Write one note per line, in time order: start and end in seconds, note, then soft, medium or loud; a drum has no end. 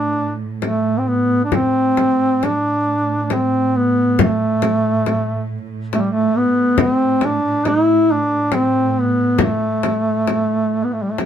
0.00 1.52 A2 soft
0.00 0.35 D4 medium
0.62 1.00 A3 medium
0.62 frame drum soft
0.99 1.10 C4 soft
1.08 1.44 B3 medium
1.45 1.56 D4 soft
1.52 11.26 A2 soft
1.52 2.46 C4 medium
1.52 frame drum medium
1.97 frame drum soft
2.43 3.24 D4 medium
2.43 frame drum soft
3.24 3.34 D4 medium
3.30 3.79 C4 medium
3.30 frame drum soft
3.77 4.20 B3 medium
4.19 5.64 A3 medium
4.19 frame drum medium
4.62 frame drum soft
5.06 frame drum soft
5.93 5.99 A3 medium
5.93 frame drum soft
5.98 6.09 G3 medium
6.08 6.39 A3 medium
6.37 6.83 B3 medium
6.78 7.27 C4 medium
6.78 frame drum medium
7.21 frame drum soft
7.25 7.69 D4 medium
7.65 8.13 E4 medium
7.65 frame drum soft
8.11 8.56 D4 medium
8.52 8.91 C4 medium
8.52 frame drum soft
8.91 9.03 C4 medium
9.01 9.44 B3 medium
9.38 frame drum medium
9.43 10.86 A3 medium
9.83 frame drum soft
10.28 frame drum soft
10.84 10.94 B3 soft
10.93 11.04 A3 soft
11.03 11.13 G3 soft
11.12 11.20 A3 soft
11.18 frame drum soft